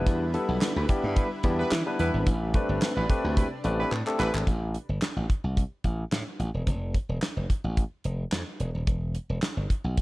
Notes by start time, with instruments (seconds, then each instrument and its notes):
Already playing: analog synth pad D3 G3 E4 B4, tine electric piano G3 B3 D4 E4 B4
0.06 slap bass E2, kick, closed hi-hat
0.34 tine electric piano G3 B3 D4 E4 A4, closed hi-hat
0.49 slap bass B1
0.61 snare, clap, closed hi-hat
0.76 slap bass D2, horn section E4 G4 B4
0.89 tine electric piano G3 B3 D4 E4 G4, kick, closed hi-hat
1.04 slap bass G2
1.16 horn section E4 G4 B4, kick, closed hi-hat
1.43 slap bass E2, tine electric piano G3 B3 D4 E4 G4, kick, closed hi-hat
1.59 horn section E4 G4 B4
1.71 slap bass E3, snare, clap, closed hi-hat
1.86 tine electric piano G3 B3 D4 E4 B4
1.99 slap bass E2, horn section E4 G4 B4, closed hi-hat
2.14 slap bass G#1
2.27 slap bass A1, analog synth pad C3 D4, kick, closed hi-hat
2.54 tine electric piano A3 C4 D4 G4 B4, kick, closed hi-hat
2.69 slap bass G1
2.82 snare, clap, closed hi-hat
2.96 slap bass A1, horn section E4 G4 B4
3.09 tine electric piano A3 C4 D4 G4 B4, kick, closed hi-hat
3.24 slap bass D2
3.37 horn section E4 G4 B4, kick, closed hi-hat
3.64 slap bass A1, tine electric piano A3 C4 D4 G4 B4, closed hi-hat
3.79 horn section E4 G4 B4
3.92 slap bass A2, clap
4.06 tine electric piano A3 C4 D4 G4 A4, clap
4.19 slap bass A1, horn section E4 G4 B4, clap
4.34 slap bass G#1, clap
4.47 slap bass A1, kick, closed hi-hat
4.74 closed hi-hat
4.89 slap bass G1
5.02 snare, clap, closed hi-hat
5.16 slap bass A1
5.30 kick, closed hi-hat
5.44 slap bass C2
5.57 kick, closed hi-hat
5.84 slap bass A1, kick, closed hi-hat
6.12 slap bass A2, snare, clap, closed hi-hat
6.39 slap bass A1, closed hi-hat
6.54 slap bass E1
6.67 slap bass F1, kick, closed hi-hat
6.94 kick, closed hi-hat
7.09 slap bass E1
7.22 snare, clap, closed hi-hat
7.37 slap bass F1
7.50 kick, closed hi-hat
7.64 slap bass A1
7.77 kick, closed hi-hat
8.04 slap bass F1, closed hi-hat
8.32 slap bass F2, snare, clap, closed hi-hat
8.60 slap bass E1, closed hi-hat
8.75 slap bass D#1
8.87 slap bass E1, kick, closed hi-hat
9.15 closed hi-hat
9.29 slap bass E1
9.42 snare, clap, closed hi-hat
9.57 slap bass G1
9.70 kick, closed hi-hat
9.84 slap bass B1
9.97 kick, closed hi-hat